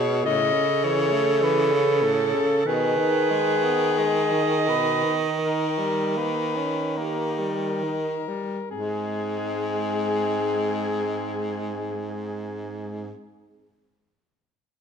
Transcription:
Already playing: B2 G#4 C#5
0.24 A2 C#3 A4 D#5
0.53 C#3
0.84 E3 C#5
1.12 A3
1.42 E3 B4
1.72 C#3
2.02 A2 A4
2.35 C#3
2.65 B2 D#3 G#4 B4
2.98 D#3
3.31 G#3
3.64 B3
3.98 G#3 D#5
4.32 D#3
4.68 B2 B4
5.04 D#3
5.41 D#3 A#4
5.78 G3
6.17 A#3 B4
6.56 C#4
6.97 A#3 G4 A#4
7.39 G3
7.83 D#3
8.28 G3
8.71 G#2 G#3 C4 G#4

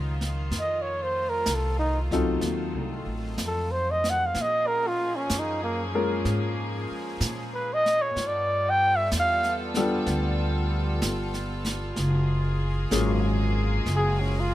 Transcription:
Already playing: C#2 D#3 F#3 C#4 D#4 F4 A#4
0.21 snare
0.50 F2 A3, brush sweep, snare
0.60 D#5
0.82 C#5
1.03 C5
1.29 A#4
1.46 C2, snare, hi-hat pedal
1.55 A4
1.79 D#4
2.11 F#3 C4 D#4 F4 A4, kick, snare
2.41 D#2, brush sweep, snare
2.74 C2
3.06 A1
3.38 F2, snare, hi-hat pedal
3.46 A4
3.71 C5
3.91 D#5
4.04 snare
4.10 F#5
4.26 F5
4.34 A#2 F3 A#3 C#4 G#4, brush sweep, snare
4.42 D#5
4.67 A#4
4.87 F4
5.16 C#4
5.30 F#2, snare, hi-hat pedal
5.39 D#4
5.63 A#3
5.95 G#3 A#3 C#4 F4 A#4
6.25 G#2, brush sweep, snare
6.91 muted upright bass stroke
7.21 A#2, snare, hi-hat pedal
7.54 B4
7.74 D#5
7.86 snare
8.02 C#5
8.16 G2 G3 B3 F4 A4, brush sweep, snare
8.27 D5
8.70 G5
8.96 E5
9.12 E2, snare, hi-hat pedal
9.20 F5
9.43 snare
9.74 G3 B3 D4 F4 A4, snare
10.06 D2, brush sweep, snare
11.02 G1, snare, hi-hat pedal
11.34 snare
11.65 snare
11.66 snare
11.96 F#1 G#3 A#3 G#4, brush sweep, snare
12.91 G#1 F#3 A#3 C#4 F4 G#4, snare, hi-hat pedal
13.86 F#1, brush sweep, snare
13.96 G#4
14.20 C#4
14.40 F4

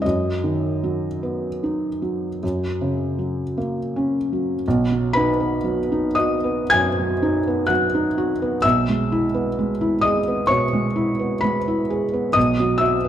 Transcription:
0.02 F#2 D#5
0.44 D#3
0.84 F#3
1.23 B3
1.63 D#4
2.02 F#3
2.43 F#2
2.81 C#3
3.19 F#3
3.58 A#3
3.96 C#4
4.33 F#3
4.68 B1
4.92 F#3
5.13 D#4 B4 B5
5.40 B3
5.64 F#3
5.92 D#4
6.15 F#4 D#5 D#6
6.44 B3
6.70 F#2 G#5 G#6
7.00 F#3
7.23 D#4
7.48 B3
7.67 F#3 F#5 F#6
7.95 D#4
8.18 F#4
8.42 B3
8.62 B1 E5 E6
8.89 G#3
9.12 E4
9.34 B3
9.59 G#3
9.81 E4
10.01 G#4 D#5 D#6
10.28 B3
10.47 B2 C#5 C#6
10.73 G#3
10.96 E4
11.19 B3
11.41 G#3 B4 B5
11.68 E4
11.90 G#4
12.13 B3
12.33 B1 D#5 D#6
12.60 F#3
12.78 F#4 E5 E6
13.04 B4

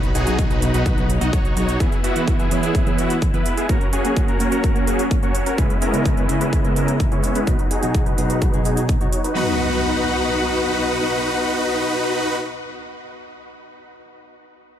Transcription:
Already playing: B1 F#3 B3 D#4
0.03 closed hi-hat
0.15 B1 D#4 F#4 G#4, closed hi-hat
0.26 B2 F#3 B3 D#4 F#4, closed hi-hat
0.39 kick, closed hi-hat
0.50 B1 D#4 F#4 B4, closed hi-hat
0.61 B2 F#3 B3 D#4 G#4, closed hi-hat
0.74 B1 D#4 F#4 B4, closed hi-hat
0.86 B1 D#4 F#4 B4, kick, closed hi-hat
0.97 B2 F#3 B3 D#4 G#4, closed hi-hat
1.10 closed hi-hat
1.21 B1 B2 F#3 B3 D#4 F#4 D#5, closed hi-hat
1.33 B1 D#4 F#4 C#5, kick, closed hi-hat
1.45 closed hi-hat
1.56 B1 F#3 B3 D#4 F#4 G#4 C#5, closed hi-hat
1.69 closed hi-hat
1.80 E3 G#3 B3 E4 G#4 B4, kick, closed hi-hat
1.92 closed hi-hat
2.04 B3 E4 F#4, closed hi-hat
2.15 E3 B3 E4 G#4 B4, closed hi-hat
2.28 kick, closed hi-hat
2.39 B3 E4 G#4, closed hi-hat
2.50 E3 B3 E4 G#4 C#5, closed hi-hat
2.63 B3 E4 G#4, closed hi-hat
2.75 B3 E4 G#4, kick, closed hi-hat
2.86 E3 B3 E4 G#4 C#5, closed hi-hat
2.98 B3 E4 F#4, closed hi-hat
3.10 closed hi-hat
3.22 kick, closed hi-hat
3.33 E3 B3 E4 G#4 B4, closed hi-hat
3.46 closed hi-hat
3.57 B3 E4 G#4, closed hi-hat
3.69 F#3 A#3 C#4 F#4 A#4, kick, closed hi-hat
3.81 closed hi-hat
3.93 C#4 F#4 G#4, closed hi-hat
4.04 A#3 C#4 F#4 A#4, closed hi-hat
4.17 kick, closed hi-hat
4.28 C#4 F#4 A#4, closed hi-hat
4.39 A#3 C#4 F#4 C#5, closed hi-hat
4.52 C#4 F#4 A#4, closed hi-hat
4.64 C#4 A#4, kick, closed hi-hat
4.75 A#3 C#4 F#4 C#5, closed hi-hat
4.87 C#4 F#4 G#4, closed hi-hat
4.99 closed hi-hat
5.11 kick, closed hi-hat
5.22 A#3 C#4 F#4 A#4 C#5, closed hi-hat
5.35 closed hi-hat
5.46 C#4 F#4 A#4, closed hi-hat
5.57 C#3 G#3 B3 C#4 E4 G#4 B4 D#5, kick, closed hi-hat
5.70 closed hi-hat
5.82 G#3 B3 C#4 E4 A#4, closed hi-hat
5.93 C#3 B3 C#4 E4 G#4, closed hi-hat
6.06 kick, closed hi-hat
6.17 G#3 B3 C#4 E4 B4, closed hi-hat
6.28 C#3 B3 C#4 E4 A#4, closed hi-hat
6.41 G#3 B3 C#4 E4 B4, closed hi-hat
6.53 G#3 B3 C#4 E4 B4, kick, closed hi-hat
6.64 C#3 B3 C#4 E4 A#4, closed hi-hat
6.76 G#3 B3 C#4 E4 A#4, closed hi-hat
6.88 closed hi-hat
7.00 kick, closed hi-hat
7.11 C#3 G#3 B3 C#4 E4 G#4 C#5, closed hi-hat
7.24 closed hi-hat
7.35 G#3 B3 C#4 E4 B4, closed hi-hat
7.47 B2 F#3 B3 D#4 F#4 B4, kick, closed hi-hat
7.59 closed hi-hat
7.71 D#4 F#4 G#4, closed hi-hat
7.82 B2 F#3 B3 D#4 F#4, closed hi-hat
7.94 kick, closed hi-hat
8.06 D#4 F#4 B4, closed hi-hat
8.17 B2 F#3 B3 D#4 G#4, closed hi-hat
8.30 D#4 F#4 B4, closed hi-hat
8.42 D#4 F#4 B4, kick, closed hi-hat
8.53 B2 F#3 B3 D#4 G#4, closed hi-hat
8.65 D#4 F#4 G#4, closed hi-hat
8.77 closed hi-hat
8.89 kick, closed hi-hat
9.00 B2 F#3 B3 D#4 F#4 C#5, closed hi-hat
9.13 closed hi-hat
9.24 D#4 F#4 B4, closed hi-hat
9.34 B2 F#3 B3 D#4 F#4 B4 F#5, impact

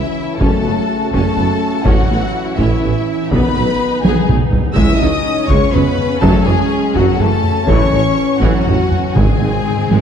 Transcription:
Already playing: C#3 E3 C#4 E4 E5
0.38 F#1 F#2 A3 C#4 F#4 A4 A5, taiko
0.64 F#1 F#2 B3
1.11 F#1 F#2 A3 C#4 A4 A5, taiko
1.37 F#1 F#2 B3
1.84 A1 A2 F#3 C#4 E4 F#4 F#5, taiko
1.88 E3 C#4
2.09 A1 A2 B3
2.57 A1 A2 E3 C#4 E4 E5, taiko
2.83 A1 A2 B3
3.30 B1 B2 D#3 B3 D#4 B4 B5, taiko
3.57 B1 B2 A3
4.02 B1 B2 G#3 B3 G#4 G#5, taiko high
4.29 B1 B2 A3, taiko mid
4.53 taiko low
4.76 C#2 C#3 G#3 C#4 E4 E5 E6, taiko
4.98 C#2 F#3 D#4 D#5 D#6
5.02 C#2 C#3
5.47 C#2 C#3 G#3 C#4 C#5 C#6, taiko
5.71 C#2 C#3 F#3 B3 B4 B5, taiko low-mid
5.98 taiko low-mid
6.20 F#1 F#2 F#3 A3 A4 A5, taiko
6.44 F#1 F#2 E3 G#3 G#4 G#5
6.94 F#1 F#2 F#3 F#4 F#5, taiko
7.19 F#1 F#2 E3 A3 A4 A5, taiko low-mid
7.44 taiko low-mid
7.66 A1 A2 E3 C#4 C#5 C#6, taiko
7.92 A1 A2 D#3
8.41 A1 A2 E3 F#3 F#4 F#5, taiko
8.66 A1 A2 D#3, taiko low-mid
8.91 taiko low-mid
9.15 G#1 G#2 D#3 G#3 C4 G#4 G#5, taiko, reverse cymbal
9.24 G#2
9.32 G#2
9.40 G#1 G#2 F#3
9.46 G#2
9.55 G#2
9.61 G#2
9.70 G#2
9.77 G#2
9.86 G#2
9.91 G#1 G#2 G#3, taiko high

